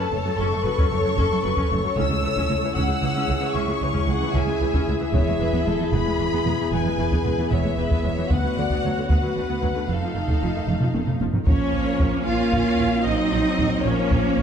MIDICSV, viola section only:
0, 0, Header, 1, 2, 480
1, 0, Start_track
1, 0, Key_signature, 3, "minor"
1, 0, Tempo, 527704
1, 1792, Time_signature, 12, 3, 24, 8
1, 13119, End_track
2, 0, Start_track
2, 0, Title_t, "Viola section"
2, 0, Program_c, 0, 48
2, 0, Note_on_c, 0, 69, 57
2, 105, Note_on_c, 0, 57, 49
2, 154, Note_off_c, 0, 57, 0
2, 232, Note_on_c, 0, 54, 50
2, 280, Note_off_c, 0, 54, 0
2, 362, Note_on_c, 0, 61, 70
2, 408, Note_off_c, 0, 61, 0
2, 473, Note_on_c, 0, 57, 51
2, 520, Note_off_c, 0, 57, 0
2, 586, Note_on_c, 0, 54, 45
2, 635, Note_off_c, 0, 54, 0
2, 702, Note_on_c, 0, 61, 70
2, 752, Note_off_c, 0, 61, 0
2, 832, Note_on_c, 0, 57, 46
2, 880, Note_off_c, 0, 57, 0
2, 948, Note_on_c, 0, 54, 47
2, 996, Note_off_c, 0, 54, 0
2, 1066, Note_on_c, 0, 61, 64
2, 1115, Note_off_c, 0, 61, 0
2, 1186, Note_on_c, 0, 57, 54
2, 1235, Note_off_c, 0, 57, 0
2, 1311, Note_on_c, 0, 54, 44
2, 1359, Note_off_c, 0, 54, 0
2, 1427, Note_on_c, 0, 61, 57
2, 1476, Note_off_c, 0, 61, 0
2, 1553, Note_on_c, 0, 57, 48
2, 1601, Note_off_c, 0, 57, 0
2, 1676, Note_on_c, 0, 54, 46
2, 1723, Note_off_c, 0, 54, 0
2, 1801, Note_on_c, 0, 61, 52
2, 1847, Note_off_c, 0, 61, 0
2, 1910, Note_on_c, 0, 56, 44
2, 1958, Note_off_c, 0, 56, 0
2, 2040, Note_on_c, 0, 52, 42
2, 2086, Note_off_c, 0, 52, 0
2, 2158, Note_on_c, 0, 61, 63
2, 2205, Note_off_c, 0, 61, 0
2, 2267, Note_on_c, 0, 56, 43
2, 2316, Note_off_c, 0, 56, 0
2, 2401, Note_on_c, 0, 52, 39
2, 2447, Note_off_c, 0, 52, 0
2, 2481, Note_off_c, 0, 69, 0
2, 2510, Note_on_c, 0, 61, 54
2, 2511, Note_on_c, 0, 68, 60
2, 2558, Note_off_c, 0, 61, 0
2, 2623, Note_on_c, 0, 56, 44
2, 2673, Note_off_c, 0, 56, 0
2, 2749, Note_on_c, 0, 52, 47
2, 2797, Note_off_c, 0, 52, 0
2, 2874, Note_on_c, 0, 61, 71
2, 2922, Note_off_c, 0, 61, 0
2, 2983, Note_on_c, 0, 56, 50
2, 3033, Note_off_c, 0, 56, 0
2, 3102, Note_on_c, 0, 52, 49
2, 3152, Note_off_c, 0, 52, 0
2, 3228, Note_on_c, 0, 61, 65
2, 3277, Note_off_c, 0, 61, 0
2, 3344, Note_on_c, 0, 56, 49
2, 3393, Note_off_c, 0, 56, 0
2, 3475, Note_on_c, 0, 52, 46
2, 3523, Note_off_c, 0, 52, 0
2, 3583, Note_on_c, 0, 61, 57
2, 3633, Note_off_c, 0, 61, 0
2, 3717, Note_on_c, 0, 56, 42
2, 3764, Note_off_c, 0, 56, 0
2, 3834, Note_on_c, 0, 52, 55
2, 3882, Note_off_c, 0, 52, 0
2, 3951, Note_on_c, 0, 61, 56
2, 4000, Note_off_c, 0, 61, 0
2, 4073, Note_on_c, 0, 56, 54
2, 4121, Note_off_c, 0, 56, 0
2, 4190, Note_on_c, 0, 52, 48
2, 4238, Note_off_c, 0, 52, 0
2, 4311, Note_on_c, 0, 61, 61
2, 4359, Note_off_c, 0, 61, 0
2, 4439, Note_on_c, 0, 56, 44
2, 4486, Note_off_c, 0, 56, 0
2, 4549, Note_on_c, 0, 52, 41
2, 4598, Note_off_c, 0, 52, 0
2, 4668, Note_on_c, 0, 59, 54
2, 4717, Note_off_c, 0, 59, 0
2, 4788, Note_on_c, 0, 56, 39
2, 4837, Note_off_c, 0, 56, 0
2, 4904, Note_on_c, 0, 52, 47
2, 4954, Note_off_c, 0, 52, 0
2, 5028, Note_on_c, 0, 59, 52
2, 5077, Note_off_c, 0, 59, 0
2, 5143, Note_on_c, 0, 56, 39
2, 5193, Note_off_c, 0, 56, 0
2, 5276, Note_on_c, 0, 52, 41
2, 5323, Note_off_c, 0, 52, 0
2, 5386, Note_on_c, 0, 59, 60
2, 5436, Note_off_c, 0, 59, 0
2, 5515, Note_on_c, 0, 56, 38
2, 5563, Note_off_c, 0, 56, 0
2, 5626, Note_on_c, 0, 52, 43
2, 5675, Note_off_c, 0, 52, 0
2, 5753, Note_on_c, 0, 59, 55
2, 5801, Note_off_c, 0, 59, 0
2, 5877, Note_on_c, 0, 56, 41
2, 5924, Note_off_c, 0, 56, 0
2, 6002, Note_on_c, 0, 52, 44
2, 6048, Note_off_c, 0, 52, 0
2, 6113, Note_on_c, 0, 59, 63
2, 6161, Note_off_c, 0, 59, 0
2, 6245, Note_on_c, 0, 56, 45
2, 6291, Note_off_c, 0, 56, 0
2, 6349, Note_on_c, 0, 52, 42
2, 6398, Note_off_c, 0, 52, 0
2, 6473, Note_on_c, 0, 59, 51
2, 6521, Note_off_c, 0, 59, 0
2, 6605, Note_on_c, 0, 56, 42
2, 6651, Note_off_c, 0, 56, 0
2, 6722, Note_on_c, 0, 52, 46
2, 6769, Note_off_c, 0, 52, 0
2, 6827, Note_on_c, 0, 59, 67
2, 6876, Note_off_c, 0, 59, 0
2, 6950, Note_on_c, 0, 56, 43
2, 6998, Note_off_c, 0, 56, 0
2, 7071, Note_on_c, 0, 52, 39
2, 7120, Note_off_c, 0, 52, 0
2, 7195, Note_on_c, 0, 59, 56
2, 7243, Note_off_c, 0, 59, 0
2, 7304, Note_on_c, 0, 56, 41
2, 7354, Note_off_c, 0, 56, 0
2, 7435, Note_on_c, 0, 52, 40
2, 7483, Note_off_c, 0, 52, 0
2, 7547, Note_on_c, 0, 66, 44
2, 7553, Note_off_c, 0, 68, 0
2, 7554, Note_on_c, 0, 59, 53
2, 7602, Note_off_c, 0, 59, 0
2, 7674, Note_on_c, 0, 54, 36
2, 7722, Note_off_c, 0, 54, 0
2, 7794, Note_on_c, 0, 50, 38
2, 7842, Note_off_c, 0, 50, 0
2, 7920, Note_on_c, 0, 59, 54
2, 7967, Note_off_c, 0, 59, 0
2, 8052, Note_on_c, 0, 54, 38
2, 8096, Note_off_c, 0, 54, 0
2, 8159, Note_on_c, 0, 50, 37
2, 8206, Note_off_c, 0, 50, 0
2, 8272, Note_on_c, 0, 59, 45
2, 8320, Note_off_c, 0, 59, 0
2, 8391, Note_on_c, 0, 54, 37
2, 8439, Note_off_c, 0, 54, 0
2, 8517, Note_on_c, 0, 50, 40
2, 8564, Note_off_c, 0, 50, 0
2, 8629, Note_on_c, 0, 59, 49
2, 8678, Note_off_c, 0, 59, 0
2, 8749, Note_on_c, 0, 54, 42
2, 8798, Note_off_c, 0, 54, 0
2, 8870, Note_on_c, 0, 50, 38
2, 8919, Note_off_c, 0, 50, 0
2, 8962, Note_off_c, 0, 66, 0
2, 8996, Note_on_c, 0, 57, 40
2, 8999, Note_on_c, 0, 63, 41
2, 9043, Note_off_c, 0, 57, 0
2, 9133, Note_on_c, 0, 53, 43
2, 9177, Note_off_c, 0, 53, 0
2, 9237, Note_on_c, 0, 51, 37
2, 9284, Note_off_c, 0, 51, 0
2, 9355, Note_on_c, 0, 57, 48
2, 9403, Note_off_c, 0, 57, 0
2, 9477, Note_on_c, 0, 53, 41
2, 9525, Note_off_c, 0, 53, 0
2, 9590, Note_on_c, 0, 51, 38
2, 9639, Note_off_c, 0, 51, 0
2, 9710, Note_on_c, 0, 57, 49
2, 9758, Note_off_c, 0, 57, 0
2, 9832, Note_on_c, 0, 53, 41
2, 9880, Note_off_c, 0, 53, 0
2, 9947, Note_on_c, 0, 51, 37
2, 9996, Note_off_c, 0, 51, 0
2, 10072, Note_on_c, 0, 57, 51
2, 10120, Note_off_c, 0, 57, 0
2, 10199, Note_on_c, 0, 53, 31
2, 10229, Note_off_c, 0, 63, 0
2, 10246, Note_off_c, 0, 53, 0
2, 10308, Note_on_c, 0, 51, 38
2, 10357, Note_off_c, 0, 51, 0
2, 10431, Note_on_c, 0, 58, 63
2, 11115, Note_off_c, 0, 58, 0
2, 11139, Note_on_c, 0, 61, 67
2, 11863, Note_on_c, 0, 60, 63
2, 11866, Note_off_c, 0, 61, 0
2, 12587, Note_on_c, 0, 58, 78
2, 12588, Note_off_c, 0, 60, 0
2, 13119, Note_off_c, 0, 58, 0
2, 13119, End_track
0, 0, End_of_file